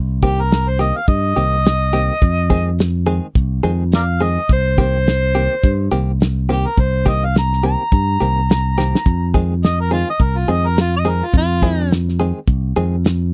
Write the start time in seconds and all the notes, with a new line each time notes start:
Already playing: C2
0.23 D#3 A#3 C4 G4, kick
0.41 A#4
0.51 snare, closed hi-hat
0.68 C5
0.79 D#3 A#3 C4 G4 D#5
0.97 F5
1.07 G2 D#5, kick, closed hi-hat
1.36 C2 D#3 A#3 C4 G4
1.65 snare, closed hi-hat
1.93 D#3 A#3 C4 G4
2.22 F2, kick, closed hi-hat
2.50 D#3 G#3 C4 G#4, kick
2.79 snare, closed hi-hat
3.07 D#3 G#3 C4 G#4
3.35 C2, kick, closed hi-hat
3.63 F2 D#3 G#3 C4 G#4
3.92 A#4 D5 F5, snare, closed hi-hat
4.21 D#3 G#3 C4 G#4 D#5
4.49 C2 C5, kick, closed hi-hat
4.78 D#3 A#3 C4 G4 C5, kick
5.06 snare, closed hi-hat
5.35 D#3 A#3 C4 G4
5.63 G2, kick, closed hi-hat
5.92 C2 D#3 A#3 C4 G4
6.20 snare, closed hi-hat
6.49 D#3 A#3 C4 G4
6.67 A#4
6.77 C2 C5, kick, closed hi-hat
7.06 D#3 A#3 C4 G4 D#5, kick
7.25 F5
7.35 A#5, snare, closed hi-hat
7.53 snare
7.63 D#3 A#3 C4 G4 A#5
7.92 G2, kick, closed hi-hat
8.21 C2 D#3 A#3 C4 G4
8.50 snare, closed hi-hat
8.78 D#3 A#3 C4 G4, snare
8.95 snare
9.06 F2, kick, closed hi-hat
9.34 D#3 G#3 C4 G#4, kick
9.63 D#5, snare, closed hi-hat
9.81 A#4
9.91 D#3 G#3 C4 F4 G#4
10.10 D#5
10.20 C2 A#4, kick, closed hi-hat
10.38 F4
10.48 F2 D#3 G#3 C4 G#4 D#5
10.67 A#4
10.77 F4, snare, closed hi-hat
10.96 D#5
11.05 D#3 G#3 C4 G#4
11.09 A#4
11.26 F4
11.33 F2, kick, closed hi-hat
11.37 F4
11.62 D#3 G#3 C4 G#4, kick
11.91 snare, closed hi-hat
12.09 snare
12.20 D#3 G#3 C4 G#4
12.48 C2, kick, closed hi-hat
12.76 F2 D#3 G#3 C4 G#4
13.05 snare, closed hi-hat